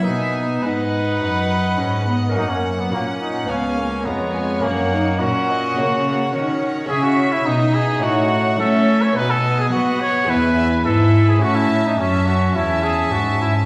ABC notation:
X:1
M:4/4
L:1/16
Q:1/4=106
K:F#mix
V:1 name="Violin section"
g4 f12 | f8 g4 a2 g2 | f4 f8 c4 | [K:Alyd] e8 f4 e4 |
g4 f4 g4 e4 | a4 a4 a8 |]
V:2 name="Violin section"
e4 d4 d8 | f4 f4 ^e4 c4- | c4 A2 d2 c4 f4 | [K:Alyd] e4 d4 c4 c4 |
d8 e2 e2 B4 | e4 e4 e8 |]
V:3 name="Trumpet"
D4 B8- B3 z | D C2 B, A,2 D2 C4 B,4 | A,4 F8- F3 z | [K:Alyd] G F2 E D2 G2 F4 A3 c |
B A2 G F2 c2 B4 A3 G | F E2 D C2 F2 E2 G2 F2 E2 |]
V:4 name="Viola section"
B,4 D8 C2 B,2 | A,4 C4 B,2 A,2 G,4 | A,2 D2 C4 A,2 A,2 C4 | [K:Alyd] C4 D8 C4 |
B,8 B,4 E4 | C4 C4 C8 |]
V:5 name="Lute"
[B,D]16 | [A,C]8 [B,C]8 | [A,C]12 z4 | [K:Alyd] [G,CE]8 [A,CE]8 |
[B,D]8 [G,B,E]8 | [A,C]16 |]
V:6 name="Lute" clef=bass
B,,4 G,,4 F,,4 G,,4 | F,,4 A,,4 z4 ^E,,4 | F,,4 A,,4 C,4 D,4 | [K:Alyd] C,4 B,,4 A,,4 A,4 |
B,,4 B,4 E,,4 G,,4 | A,,4 F,,4 E,,4 G,,4 |]
V:7 name="Cello section" clef=bass
B,,4 G,,4 F,,4 G,,4 | F,,4 A,,4 C,,4 ^E,,4 | F,,4 A,,4 C,4 D,4 | [K:Alyd] C,4 B,,4 A,,4 A,4 |
B,,4 B,4 E,,4 G,,4 | A,,4 F,,4 E,,4 G,,4 |]